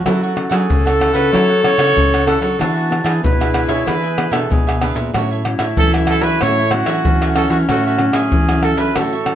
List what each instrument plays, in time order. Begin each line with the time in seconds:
0.05 nylon-string guitar F#3 C#4 E4 A4, cavaquinho E4 A4 C#5 F#5, trumpet F#4, clarinet A4, pandeiro, tamborim, maracas, surdo
0.23 trumpet F#4, cavaquinho A4 C#5 F#5, pandeiro, maracas
0.36 nylon-string guitar C#4 E4 A4, muted cavaquinho stroke, pandeiro, tamborim
0.49 nylon-string guitar F#3, trumpet G#4, cavaquinho C#5 F#5, pandeiro, tamborim, maracas
0.70 nylon-string guitar C#3, pandeiro, maracas, surdo
0.85 nylon-string guitar C#4 E4 A4, trumpet A4, cavaquinho A4 C#5 F#5, pandeiro, tamborim, maracas
0.99 cavaquinho E4 A4 C#5 F#5, pandeiro, tamborim
1.13 nylon-string guitar C#3, cavaquinho A4 C#5 F#5, trumpet B4, pandeiro, maracas
1.32 nylon-string guitar F#3 C#4 E4 A4, cavaquinho E4 A4 C#5 F#5, trumpet C#5, pandeiro, tamborim, maracas, surdo
1.49 cavaquinho A4 C#5 F#5, pandeiro, maracas
1.63 nylon-string guitar C#4 E4 A4, trumpet C#5, pandeiro, tamborim
1.77 nylon-string guitar C#3 E4 A4, cavaquinho A4 C#5 F#5, pandeiro, tamborim, maracas
1.97 nylon-string guitar C#3, pandeiro, maracas, surdo
2.13 cavaquinho A4 C#5 F#5, pandeiro, tamborim, maracas
2.26 nylon-string guitar C#4 E4 A4, cavaquinho E4 A4 C#5 F#5, trumpet A4, pandeiro, tamborim, maracas
2.41 nylon-string guitar F#3, trumpet F#4, cavaquinho A4 C#5 F#5, pandeiro, maracas
2.59 nylon-string guitar E3 B3 D4 G#4, cavaquinho D4 G#4 B4 E5, clarinet D4, trumpet F#4, pandeiro, tamborim, maracas, surdo
2.75 trumpet F#4, cavaquinho G#4 B4 E5, pandeiro, maracas
2.90 nylon-string guitar B3 D4 G#4, muted cavaquinho stroke, pandeiro, tamborim
3.04 nylon-string guitar E3, trumpet G#4, cavaquinho G#4 B4 E5, pandeiro, tamborim, maracas
3.24 nylon-string guitar B2 B3 D4 G#4, clarinet E4, trumpet B4, pandeiro, maracas, surdo
3.40 nylon-string guitar B3 D4 G#4, cavaquinho G#4 B4 E5, pandeiro, tamborim, maracas
3.53 cavaquinho D4 G#4 B4 E5, pandeiro, tamborim, maracas
3.68 nylon-string guitar B2, cavaquinho G#4 B4 E5, trumpet C#5, pandeiro, maracas
3.86 nylon-string guitar E3 B3 D4 G#4, cavaquinho D4 G#4 B4 E5, trumpet B4, pandeiro, tamborim, maracas, surdo
4.03 cavaquinho G#4 B4 E5, pandeiro, maracas
4.17 nylon-string guitar B3 D4 G#4, pandeiro, tamborim, maracas
4.31 nylon-string guitar B2 B3 D4 G#4, cavaquinho G#4 B4 E5, trumpet A4, pandeiro, tamborim, maracas
4.50 nylon-string guitar B2, trumpet G#4, pandeiro, maracas, surdo
4.67 cavaquinho G#4 B4 E5, pandeiro, tamborim, maracas
4.81 nylon-string guitar B3 D4 G#4, cavaquinho D4 G#4 B4 E5, pandeiro, tamborim, maracas
4.95 nylon-string guitar A#2, cavaquinho G#4 B4 E5, pandeiro, maracas
5.14 nylon-string guitar A2 F#3 C#4 E4, clarinet E4, cavaquinho F#4 A4 C#5 E5, pandeiro, tamborim, maracas, surdo
5.31 cavaquinho A4 C#5 E5, pandeiro, maracas
5.45 nylon-string guitar F#3 C#4 E4, muted cavaquinho stroke, pandeiro, tamborim, maracas
5.59 nylon-string guitar A2, cavaquinho A4 C#5 E5, pandeiro, tamborim, maracas
5.77 nylon-string guitar E3 F#3 C#4 E4, trumpet A4, pandeiro, maracas, surdo
5.94 nylon-string guitar F#3 C#4 E4, cavaquinho A4 C#5 E5, pandeiro, tamborim, maracas
6.07 cavaquinho F#4 A4 C#5 E5, trumpet A4, pandeiro, tamborim, maracas
6.22 nylon-string guitar E3, trumpet B4, cavaquinho C#5 E5, pandeiro, maracas
6.26 cavaquinho A4
6.41 nylon-string guitar A2 F#3 C#4 E4, cavaquinho F#4 A4 C#5 E5, trumpet C#5, pandeiro, tamborim, maracas, surdo
6.58 cavaquinho A4 C#5 E5, pandeiro, maracas
6.71 nylon-string guitar F#3 C#4 E4, trumpet F#4, pandeiro, tamborim
6.86 nylon-string guitar E3 F#3 C#4 E4, cavaquinho A4 C#5 E5, pandeiro, tamborim, maracas
7.05 nylon-string guitar E3, clarinet C#4, pandeiro, maracas, surdo
7.22 cavaquinho A4 C#5 E5, pandeiro, tamborim, maracas
7.35 nylon-string guitar F#3 C#4 E4, cavaquinho F#4 A4 C#5 E5, trumpet A4, pandeiro, tamborim
7.50 nylon-string guitar E3, trumpet F#4, cavaquinho A4 C#5 E5, pandeiro, maracas
7.69 nylon-string guitar A2, cavaquinho F#4 A4 C#5 E5, trumpet F#4, pandeiro, tamborim, maracas, surdo
7.86 trumpet F#4, cavaquinho A4 C#5 E5, pandeiro, maracas
7.98 nylon-string guitar F#3 C#4 E4, muted cavaquinho stroke, pandeiro, tamborim, maracas
8.13 nylon-string guitar A2, trumpet G#4, cavaquinho C#5 E5, pandeiro, tamborim, maracas
8.31 nylon-string guitar E3, pandeiro, maracas, surdo
8.48 nylon-string guitar F#3 C#4 E4, cavaquinho C#5 E5, pandeiro, tamborim, maracas
8.52 cavaquinho A4
8.63 cavaquinho F#4 A4 C#5 E5, trumpet A4, pandeiro, tamborim
8.77 nylon-string guitar E3, cavaquinho A4 C#5 E5, trumpet B4, pandeiro, maracas
8.95 nylon-string guitar A2 F#3 C#4 E4, clarinet F#4, cavaquinho F#4 A4 C#5 E5, trumpet A4, pandeiro, tamborim, maracas, surdo
9.13 cavaquinho A4 C#5 E5, pandeiro, maracas
9.24 nylon-string guitar F#3 C#4 E4, pandeiro, tamborim